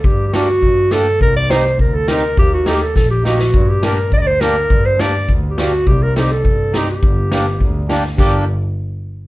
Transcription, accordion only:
\new Staff \with { instrumentName = "Accordion" } { \time 2/4 \key g \minor \tempo 4 = 103 r8 <bes d' g'>16 r8. <bes d' g'>16 r16 | r8 <c' ees' g'>16 r8. <c' ees' g'>16 r16 | r8 <bes ees' g'>16 r8. <bes ees' g'>16 r16 | r8 <bes d' g'>16 r8. <bes d' g'>16 r16 |
r8 <bes d' g'>16 r8. <bes d' g'>16 r16 | r8 <c' ees' g'>16 r8. <c' ees' g'>16 r16 | r8 <bes d' g'>16 r8. <bes d' g'>16 r16 | <bes d' g'>8 r4. | }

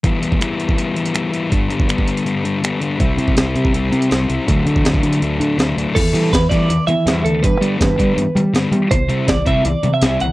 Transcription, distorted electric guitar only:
\new Staff \with { instrumentName = "Distorted electric guitar" } { \time 4/4 \key e \minor \tempo 4 = 162 <e g b e'>8 <g b e'>8 <e g b e'>4 <e g b e'>8 <g b e'>8 <e g b e'>8 <g b e'>8 | <g, d g b d'>8 <g b d'>8 <d g b d'>4 <g, d g b d'>8 <g b d'>8 <d g b d'>8 <g b d'>8 | <c g c' e'>8 <g c' e'>8 <c g c' e'>4 <c g c' e'>8 <g c' e'>8 <c g c' e'>8 <g c' e'>8 | <d fis a d'>8 <fis a d'>8 <d fis a d'>4 <d fis a d'>8 <fis a d'>8 <d fis a d'>8 <fis a d'>8 |
r8 <e g b e'>8 r8 <e g b e'>8 r4 <e g b e'>8 r8 | r8 <d g b d'>8 r8 <d g b d'>8 r4 <d g b d'>8 r8 | r8 <c g c' e'>8 r8 <c g c' e'>8 r4 <c g c' e'>8 r8 | }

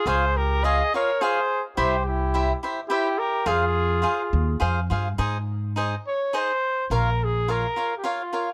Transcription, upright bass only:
\new Staff \with { instrumentName = "Upright bass" } { \clef bass \time 3/4 \key f \minor \tempo 4 = 105 des,2 r4 | c,2 r4 | f,4. ees,8 f,8 g,8 | \key aes \major aes,2 r4 |
bes,,2 r4 | }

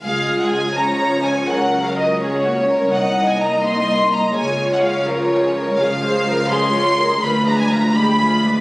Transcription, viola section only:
\new Staff \with { instrumentName = "Viola section" } { \time 6/8 \key des \major \tempo 4. = 84 << { f'4. des'4.~ | des'4. des'4. | ees'2. | f'4. f'4. |
\key des \lydian f'8 aes'8 f'8 aes'8 f'8 aes'8 | f'8 d'8 f'8 d'8 f'8 d'8 | } \\ { aes4. f4. | ges4. aes8 bes8 bes8~ | bes2. | aes4. f4. |
f8 aes8 f8 aes8 f8 aes8 | f8 aes8 f8 aes8 f8 aes8 | } >> }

